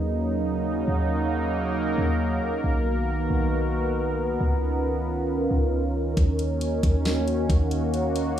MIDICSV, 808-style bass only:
0, 0, Header, 1, 2, 480
1, 0, Start_track
1, 0, Key_signature, -6, "minor"
1, 0, Tempo, 441176
1, 954, Time_signature, 4, 2, 24, 8
1, 9137, End_track
2, 0, Start_track
2, 0, Title_t, "808-style bass"
2, 0, Program_c, 0, 38
2, 0, Note_on_c, 0, 39, 111
2, 910, Note_off_c, 0, 39, 0
2, 955, Note_on_c, 0, 39, 106
2, 2111, Note_off_c, 0, 39, 0
2, 2154, Note_on_c, 0, 39, 105
2, 2615, Note_off_c, 0, 39, 0
2, 2873, Note_on_c, 0, 35, 111
2, 3565, Note_off_c, 0, 35, 0
2, 3594, Note_on_c, 0, 35, 104
2, 4750, Note_off_c, 0, 35, 0
2, 4793, Note_on_c, 0, 37, 110
2, 5950, Note_off_c, 0, 37, 0
2, 5993, Note_on_c, 0, 37, 110
2, 6685, Note_off_c, 0, 37, 0
2, 6714, Note_on_c, 0, 39, 108
2, 7405, Note_off_c, 0, 39, 0
2, 7435, Note_on_c, 0, 39, 107
2, 8126, Note_off_c, 0, 39, 0
2, 8155, Note_on_c, 0, 39, 100
2, 9137, Note_off_c, 0, 39, 0
2, 9137, End_track
0, 0, End_of_file